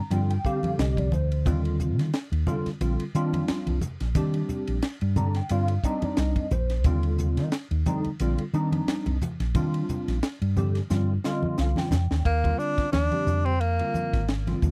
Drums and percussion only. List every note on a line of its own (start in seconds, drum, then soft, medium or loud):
0.11 hi-hat pedal medium
0.11 ride medium
0.11 high conga medium
0.30 ride medium
0.45 kick medium
0.45 hi-hat pedal medium
0.63 ride medium
0.63 high conga medium
0.79 snare medium
0.79 hi-hat pedal medium
0.79 ride medium
0.97 kick medium
0.97 ride medium
0.97 high conga medium
1.12 hi-hat pedal medium
1.12 high conga medium
1.12 low conga medium
1.32 ride medium
1.45 kick medium
1.45 hi-hat pedal medium
1.45 ride medium
1.45 low conga medium
1.65 ride medium
1.80 hi-hat pedal medium
1.80 low conga medium
1.99 snare soft
1.99 ride medium
2.13 snare medium
2.13 hi-hat pedal medium
2.13 ride medium
2.33 ride medium
2.47 hi-hat pedal medium
2.47 high conga medium
2.47 low conga medium
2.66 snare soft
2.66 ride soft
2.81 hi-hat pedal medium
2.81 ride medium
3.00 ride medium
3.15 hi-hat pedal medium
3.33 ride medium
3.33 high conga medium
3.48 snare loud
3.48 hi-hat pedal medium
3.48 ride medium
3.67 ride medium
3.67 high conga medium
3.81 hi-hat pedal medium
3.81 high conga medium
3.81 low conga medium
4.00 snare soft
4.00 ride medium
4.15 kick medium
4.15 hi-hat pedal medium
4.15 ride medium
4.15 low conga medium
4.34 ride medium
4.49 hi-hat pedal medium
4.49 low conga medium
4.67 ride medium
4.82 snare medium
4.82 hi-hat pedal medium
4.82 ride medium
5.01 ride soft
5.16 hi-hat pedal medium
5.16 high conga medium
5.16 low conga medium
5.34 snare soft
5.34 ride medium
5.49 hi-hat pedal medium
5.49 ride medium
5.68 ride medium
5.83 kick medium
5.83 hi-hat pedal medium
6.02 ride medium
6.02 high conga medium
6.17 snare loud
6.17 hi-hat pedal medium
6.17 ride medium
6.36 kick medium
6.36 ride medium
6.36 high conga medium
6.51 hi-hat pedal medium
6.51 high conga medium
6.51 low conga medium
6.70 snare soft
6.70 ride medium
6.84 kick loud
6.84 hi-hat pedal medium
6.84 ride medium
6.84 low conga medium
7.03 ride medium
7.18 hi-hat pedal medium
7.18 low conga medium
7.37 snare soft
7.37 ride medium
7.52 snare loud
7.52 hi-hat pedal medium
7.52 ride medium
7.71 ride medium
7.86 hi-hat pedal medium
7.86 high conga medium
7.86 low conga medium
8.04 ride soft
8.20 hi-hat pedal medium
8.20 ride medium
8.38 ride medium
8.53 hi-hat pedal medium
8.72 ride medium
8.72 high conga medium
8.88 snare loud
8.88 hi-hat pedal medium
8.88 ride medium
9.06 ride medium
9.06 high conga medium
9.21 hi-hat pedal medium
9.21 high conga medium
9.21 low conga medium
9.40 snare soft
9.40 ride medium
9.55 kick loud
9.55 hi-hat pedal medium
9.55 ride medium
9.55 low conga medium
9.74 ride medium
9.89 hi-hat pedal medium
9.89 low conga medium
10.08 snare soft
10.08 ride medium
10.23 snare medium
10.23 hi-hat pedal medium
10.23 ride medium
10.42 ride medium
10.57 hi-hat pedal medium
10.57 high conga medium
10.57 low conga medium
10.75 snare soft
10.75 ride medium
10.90 snare medium
10.90 hi-hat pedal medium
10.90 high conga medium
11.24 snare medium
11.24 hi-hat pedal medium
11.43 high conga medium
11.58 snare medium
11.58 hi-hat pedal medium
11.76 snare medium
11.76 high conga medium
11.91 snare medium
11.91 hi-hat pedal medium
11.91 high conga medium
11.91 low conga medium
12.11 snare medium
12.25 kick medium
12.25 ride medium
12.44 kick medium
12.44 ride soft
12.59 hi-hat pedal medium
12.78 kick medium
12.78 snare soft
12.78 ride soft
12.93 snare medium
12.93 ride medium
12.93 high conga medium
13.11 ride soft
13.11 high conga medium
13.27 hi-hat pedal medium
13.27 low conga medium
13.46 ride soft
13.61 ride medium
13.79 ride medium
13.94 hi-hat pedal medium
13.94 high conga medium
14.13 kick medium
14.13 snare soft
14.13 ride medium
14.28 snare medium
14.28 ride medium
14.47 snare soft
14.47 ride soft
14.47 high conga medium
14.62 kick medium
14.62 hi-hat pedal medium
14.62 low conga medium